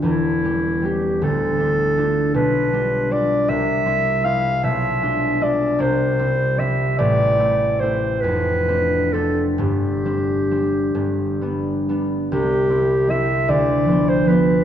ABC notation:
X:1
M:6/8
L:1/16
Q:3/8=51
K:Dphr
V:1 name="Clarinet"
=E4 G2 A6 | [K:C] B4 d2 e4 f2 | e4 d2 c4 e2 | d4 c2 B4 A2 |
G8- G2 z2 | G4 e2 d3 c B2 |]
V:2 name="Harp"
[=E,,,=E,,]2 [G,^CG]2 [G,CG]2 [D,,,D,,]2 [A,DF]2 [A,DF]2 | [K:C] [B,,,B,,]2 [G,DF]2 [G,DF]2 [C,,C,]2 [G,CE]2 [G,CE]2 | [B,,,B,,]2 [^G,DF]2 [G,DF]2 [C,,C,]2 [=G,CE]2 [G,CE]2 | [A,,,A,,]2 [A,CE]2 [A,CE]2 [F,,,F,,]2 [A,CD]2 [A,CD]2 |
[G,,,G,,]2 [G,CD]2 [G,CD]2 [G,,,G,,]2 [G,B,D]2 [G,B,D]2 | C,,2 [G,CE]2 [G,CE]2 D,,2 [F,B,F]2 [F,B,F]2 |]